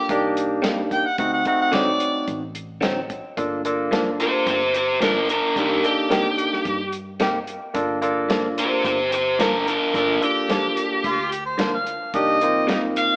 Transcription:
Already playing: G4 A4
0.09 C2 A#3 D4 D#4 G4, kick, closed hi-hat
0.37 closed hi-hat
0.62 C3 G3 A#3 D#4, snare, closed hi-hat
0.91 G5, kick, closed hi-hat
1.06 F#5
1.18 D2 A3 C4 D#4 F#4 F#5, kick, closed hi-hat
1.33 F#5
1.45 A3 C4 D#4 F#4 F#5, kick, closed hi-hat
1.62 F#5
1.72 D3 F#3 C4 D#4 D5, snare, closed hi-hat
2.00 closed hi-hat
2.28 A1, kick, closed hi-hat
2.55 closed hi-hat
2.81 D3 F#3 C4 D#4, snare, closed hi-hat
3.10 kick, closed hi-hat
3.37 G1 A#3 D4 F4 A4, kick, closed hi-hat
3.65 A#3 D4 F4 A4, closed hi-hat
3.91 G2 F3 A#3 D4, snare, closed hi-hat
4.20 G4 C5, closed hi-hat
4.47 G1 G4 C5, kick, closed hi-hat
4.74 G4 C5, closed hi-hat
5.00 G2 F3 A#3 D4 A#4, snare, closed hi-hat
5.29 D4 A#4, closed hi-hat
5.56 C2 A#3 D4 D#4 G4 A#4, kick, closed hi-hat
5.82 A#3 D4 D#4 G4 A4, closed hi-hat
6.10 C3 A#3 D#4 G4, snare, closed hi-hat
6.38 closed hi-hat
6.53 snare
6.65 G2, kick, closed hi-hat
6.92 closed hi-hat
7.20 C3 A#3 D#4 G4, snare, closed hi-hat
7.47 closed hi-hat
7.74 G1 A#3 D4 F4 A4, kick, closed hi-hat
8.02 A#3 D4 F4 A4, closed hi-hat
8.29 G2 F3 A#3 D4, snare, closed hi-hat
8.58 G4 C5, closed hi-hat
8.84 G1 G4 C5, kick, closed hi-hat
9.12 G4 C5, closed hi-hat
9.39 G2 F3 A#3 D4 A#4, snare, closed hi-hat
9.67 D4 A#4, closed hi-hat
9.93 G1 A#3 D4 F4 A4 A#4, kick, closed hi-hat
10.21 A#3 D4 F4 G4 A4, closed hi-hat
10.49 G2 F3 A#3 D4, snare, closed hi-hat
10.77 closed hi-hat
11.04 D2 F4, kick, closed hi-hat
11.32 G4, closed hi-hat
11.46 C5
11.58 G2 F3 A#3 D4, snare, closed hi-hat
11.74 F5
11.86 closed hi-hat
12.14 C2 A#3 D4 D#4 G4 D#5, kick, closed hi-hat
12.41 A#3 C4 D#4 F4, closed hi-hat
12.67 C3 G3 A#3 D#4, snare, closed hi-hat
12.96 F5, closed hi-hat

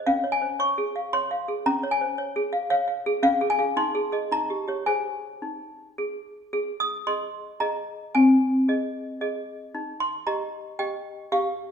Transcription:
0.06 C#4 F5
0.24 C#5
0.32 G#5
0.42 C5
0.59 C#5 C#6
0.78 G#4
0.96 F5
1.13 C#5 C6
1.31 F5
1.48 G#4
1.66 C#4 A#5
1.83 C#5
1.91 G#5
2.01 C5
2.18 C#5
2.36 G#4
2.53 F5
2.70 C#5 F5
2.88 F5
3.06 G#4
3.23 C#4 F5
3.41 G#4
3.50 G#5
3.59 G#4 F5
3.77 D#4 C6
3.95 G#4
4.12 G#4 D#5
4.32 D#4 A#5
4.50 G4
4.68 G4 C#5
4.86 G#4 C5 G#5
5.42 D#4
5.98 G#4
6.53 G#4
6.80 D#6
7.07 G#4 D#5 C6
7.60 G#4 D#5 A#5
8.15 C4 G#5
8.68 G#4 D#5
9.21 G#4 D#5
9.75 D#4
10.00 C6
10.27 G4 D#5 A#5
10.79 G4 D#5 G5
11.32 G4 F5

